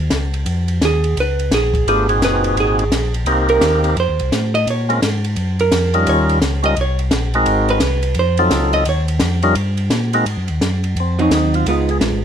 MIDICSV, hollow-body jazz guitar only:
0, 0, Header, 1, 2, 480
1, 0, Start_track
1, 0, Tempo, 350058
1, 636, Time_signature, 4, 2, 24, 8
1, 16794, End_track
2, 0, Start_track
2, 0, Title_t, "Hollow-body jazz guitar"
2, 0, Program_c, 0, 26
2, 1167, Note_on_c, 0, 68, 91
2, 1592, Note_off_c, 0, 68, 0
2, 1649, Note_on_c, 0, 71, 97
2, 2073, Note_off_c, 0, 71, 0
2, 2115, Note_on_c, 0, 68, 88
2, 2575, Note_off_c, 0, 68, 0
2, 2591, Note_on_c, 0, 68, 76
2, 3024, Note_off_c, 0, 68, 0
2, 3080, Note_on_c, 0, 71, 100
2, 3509, Note_off_c, 0, 71, 0
2, 3567, Note_on_c, 0, 68, 83
2, 4277, Note_off_c, 0, 68, 0
2, 4795, Note_on_c, 0, 70, 86
2, 5401, Note_off_c, 0, 70, 0
2, 5483, Note_on_c, 0, 72, 76
2, 6194, Note_off_c, 0, 72, 0
2, 6236, Note_on_c, 0, 75, 107
2, 6402, Note_off_c, 0, 75, 0
2, 6450, Note_on_c, 0, 73, 76
2, 6723, Note_off_c, 0, 73, 0
2, 7688, Note_on_c, 0, 70, 76
2, 8286, Note_off_c, 0, 70, 0
2, 8357, Note_on_c, 0, 73, 72
2, 9070, Note_off_c, 0, 73, 0
2, 9128, Note_on_c, 0, 75, 101
2, 9286, Note_off_c, 0, 75, 0
2, 9338, Note_on_c, 0, 73, 81
2, 9605, Note_off_c, 0, 73, 0
2, 10565, Note_on_c, 0, 71, 95
2, 11162, Note_off_c, 0, 71, 0
2, 11235, Note_on_c, 0, 72, 82
2, 11946, Note_off_c, 0, 72, 0
2, 11980, Note_on_c, 0, 75, 110
2, 12150, Note_off_c, 0, 75, 0
2, 12189, Note_on_c, 0, 73, 91
2, 12362, Note_off_c, 0, 73, 0
2, 15341, Note_on_c, 0, 54, 62
2, 15353, Note_on_c, 0, 60, 58
2, 15360, Note_on_c, 0, 63, 71
2, 15959, Note_off_c, 0, 54, 0
2, 15966, Note_off_c, 0, 60, 0
2, 15969, Note_off_c, 0, 63, 0
2, 16014, Note_on_c, 0, 56, 54
2, 16021, Note_on_c, 0, 59, 62
2, 16025, Note_on_c, 0, 65, 64
2, 16727, Note_off_c, 0, 56, 0
2, 16731, Note_off_c, 0, 59, 0
2, 16733, Note_off_c, 0, 65, 0
2, 16794, End_track
0, 0, End_of_file